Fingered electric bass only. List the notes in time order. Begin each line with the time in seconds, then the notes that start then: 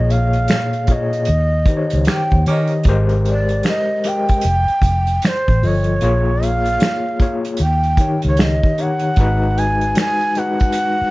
Already playing: A#1
1.28 D#2
1.93 C#2
2.32 D#2
2.46 D#3
2.86 G#1
4.45 F1
4.69 muted fingered electric bass stroke
4.82 F1
5.49 A1
5.62 G1
6.02 A#1
7.60 D#2
8.24 C#2
9.17 G#1
11.01 muted fingered electric bass stroke